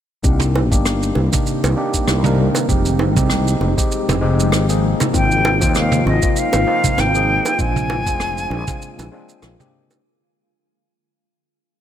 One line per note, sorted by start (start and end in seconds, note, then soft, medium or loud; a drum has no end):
0.23 0.72 C2 medium
0.23 2.66 D#3 medium
0.23 2.66 G3 medium
0.23 0.67 A#3 medium
0.23 2.66 A#3 medium
0.23 2.66 C4 medium
0.23 0.67 D4 medium
0.23 0.68 D#4 medium
0.23 4.79 G4 medium
0.23 0.68 G4 medium
0.23 kick loud
0.23 shaker medium
0.39 mid tom medium
0.39 shaker soft
0.56 high bongo medium
0.71 1.10 G1 medium
0.71 1.28 A#3 medium
0.71 1.29 D4 medium
0.71 1.29 D#4 medium
0.71 1.29 G4 medium
0.71 kick loud
0.71 shaker medium
0.86 cross-stick loud
0.86 shaker medium
1.03 shaker soft
1.15 1.28 C2 medium
1.15 high bongo medium
1.32 1.73 A#3 medium
1.32 1.74 D4 medium
1.32 1.74 D#4 medium
1.32 1.74 G4 medium
1.32 kick loud
1.32 mid tom medium
1.32 shaker medium
1.46 shaker medium
1.64 1.74 C2 medium
1.64 high bongo medium
1.64 shaker soft
1.76 2.20 A#3 medium
1.76 2.21 D4 medium
1.76 2.21 D#4 medium
1.76 2.21 G4 medium
1.94 kick medium
1.94 shaker medium
2.08 2.48 C2 medium
2.08 cross-stick medium
2.08 high bongo medium
2.08 shaker medium
2.24 2.65 A#3 medium
2.24 2.66 D4 medium
2.24 2.66 D#4 medium
2.24 2.66 A#4 medium
2.24 mid tom medium
2.24 shaker medium
2.55 high bongo medium
2.55 shaker medium
2.68 3.17 F1 medium
2.68 7.55 C3 medium
2.68 10.00 F3 medium
2.68 3.12 G#3 medium
2.68 10.00 G#3 medium
2.68 3.13 C4 medium
2.68 7.55 D#4 medium
2.68 3.13 D#4 medium
2.68 3.13 G4 medium
2.68 kick loud
2.68 shaker medium
2.85 shaker soft
2.99 high bongo medium
3.16 3.55 C2 medium
3.16 3.73 G#3 medium
3.16 3.74 C4 medium
3.16 3.74 D#4 medium
3.16 3.74 G4 medium
3.16 kick loud
3.16 mid tom medium
3.16 shaker medium
3.30 cross-stick medium
3.30 shaker medium
3.47 shaker medium
3.61 3.73 F1 loud
3.61 high bongo medium
3.77 4.18 G#3 medium
3.77 4.19 C4 medium
3.77 4.19 D#4 medium
3.77 4.19 G4 medium
3.77 kick loud
3.77 shaker medium
3.92 shaker medium
4.09 4.53 F1 medium
4.09 mid tom medium
4.09 high bongo medium
4.09 shaker soft
4.21 4.65 G#3 medium
4.21 4.65 C4 medium
4.21 4.66 D#4 medium
4.21 4.66 G4 medium
4.40 shaker medium
4.52 4.93 G#1 loud
4.52 cross-stick loud
4.52 high bongo medium
4.52 shaker medium
4.69 5.10 A#3 medium
4.69 5.10 C4 medium
4.69 5.11 D#4 medium
4.69 5.11 G#4 medium
4.69 shaker soft
4.83 7.56 F4 medium
5.00 mid tom medium
5.00 high bongo medium
5.00 shaker medium
5.13 5.63 G#1 medium
5.13 5.57 A#3 medium
5.13 5.57 C4 medium
5.13 5.58 D#4 medium
5.13 5.58 F4 medium
5.13 5.72 G5 loud
5.13 kick loud
5.13 shaker medium
5.31 shaker soft
5.45 high bongo loud
5.61 6.00 D#2 medium
5.61 6.18 A#3 medium
5.61 6.18 C4 medium
5.61 6.19 D#4 medium
5.61 6.19 F4 medium
5.61 kick loud
5.61 shaker medium
5.75 6.05 F5 medium
5.75 cross-stick medium
5.75 shaker medium
5.92 mid tom medium
5.92 shaker soft
6.06 6.18 G#1 loud
6.06 6.40 D#5 medium
6.06 high bongo medium
6.22 6.63 A#3 medium
6.22 6.64 C4 medium
6.22 6.64 D#4 medium
6.22 6.64 F4 medium
6.22 kick loud
6.22 shaker medium
6.36 7.02 F5 medium
6.36 shaker medium
6.53 6.64 G#1 medium
6.53 high bongo loud
6.53 shaker medium
6.66 7.10 A#3 medium
6.66 7.10 C4 medium
6.66 7.11 D#4 medium
6.66 7.11 F4 loud
6.84 kick medium
6.84 mid tom medium
6.84 shaker medium
6.98 7.38 G#1 loud
6.98 7.62 G5 loud
6.98 cross-stick medium
6.98 high bongo medium
6.98 shaker medium
7.14 7.55 A#3 medium
7.14 7.56 C4 medium
7.14 7.56 D#4 medium
7.14 7.56 G#4 medium
7.14 shaker soft
7.45 high bongo medium
7.45 shaker medium
7.58 8.07 A#1 medium
7.58 10.01 D3 medium
7.58 8.02 G#3 medium
7.58 10.01 A#3 medium
7.58 8.03 C4 medium
7.58 8.03 D4 medium
7.58 10.01 F4 medium
7.58 8.03 F4 medium
7.58 9.44 G#5 loud
7.58 kick loud
7.58 shaker medium
7.76 mid tom medium
7.76 shaker soft
7.90 high bongo loud
8.06 8.45 F1 loud
8.06 8.63 G#3 medium
8.06 8.64 C4 medium
8.06 8.64 D4 medium
8.06 8.64 F4 medium
8.06 kick loud
8.06 shaker medium
8.20 cross-stick loud
8.20 shaker medium
8.38 shaker soft
8.50 8.63 A#1 loud
8.50 high bongo medium
8.67 9.08 G#3 medium
8.67 9.09 C4 medium
8.67 9.09 D4 medium
8.67 9.09 F4 medium
8.67 kick loud
8.67 mid tom medium
8.67 shaker medium
8.82 shaker medium
8.99 9.08 A#1 medium
8.99 high bongo medium
8.99 shaker soft
9.12 9.55 G#3 medium
9.12 9.56 C4 medium
9.12 9.56 D4 medium
9.12 9.56 F4 medium
9.29 shaker medium
9.42 9.55 A#1 medium
9.42 cross-stick medium
9.42 high bongo medium
9.42 shaker medium
9.59 10.00 G#3 medium
9.59 10.01 C4 medium
9.59 10.01 D4 medium
9.59 10.01 G4 medium
9.59 mid tom medium
9.59 shaker soft
9.91 high bongo medium
9.91 shaker medium